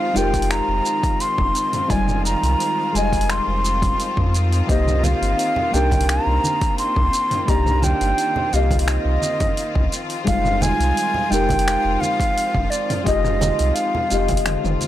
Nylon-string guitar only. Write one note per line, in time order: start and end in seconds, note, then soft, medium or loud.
0.00 0.11 G#3 medium
0.00 0.11 D#4 medium
0.00 0.12 F4 medium
0.00 0.12 G4 medium
0.00 0.13 C5 medium
0.13 1.85 G#3 medium
0.13 1.85 D#4 medium
0.13 1.86 F4 medium
0.13 1.86 G4 medium
0.18 1.87 A#4 loud
1.87 2.91 G3 medium
1.87 2.89 G#3 medium
1.87 2.90 D#4 medium
1.87 2.90 F4 medium
1.92 2.91 D5 medium
2.92 4.66 G3 medium
2.92 4.64 G#3 medium
2.92 4.65 D#4 medium
2.92 4.65 F4 medium
2.97 4.66 D#5 medium
4.67 5.68 A#3 medium
4.67 5.69 C4 medium
4.67 5.70 D#4 medium
4.67 5.70 G4 medium
4.71 5.71 C5 loud
5.71 7.43 A#3 medium
5.71 7.43 D4 medium
5.71 7.44 D#4 medium
5.71 7.44 G4 medium
5.75 7.45 A#4 loud
7.45 8.47 A#3 medium
7.45 8.48 D4 medium
7.45 8.48 D#4 medium
7.45 8.49 G4 medium
7.50 8.50 D5 loud
8.50 9.89 A#3 medium
8.50 9.90 C4 medium
8.50 9.90 D#4 medium
8.50 9.91 G4 medium
8.55 9.91 D#5 medium
10.24 11.28 G3 medium
10.24 11.26 G#3 medium
10.24 11.27 D#4 medium
10.24 11.28 F4 medium
10.29 11.28 C5 medium
11.29 13.01 G#3 loud
11.29 13.02 D#4 medium
11.29 13.02 F4 medium
11.29 13.03 G4 medium
11.34 13.03 A#4 loud
13.03 14.05 G#3 medium
13.03 14.06 D#4 medium
13.03 14.07 F4 medium
13.03 14.07 G4 medium
13.08 14.08 D#5 loud
14.09 14.88 G#3 medium
14.09 14.88 D#4 medium
14.09 14.88 F4 medium
14.09 14.88 G4 medium
14.13 14.88 D#5 medium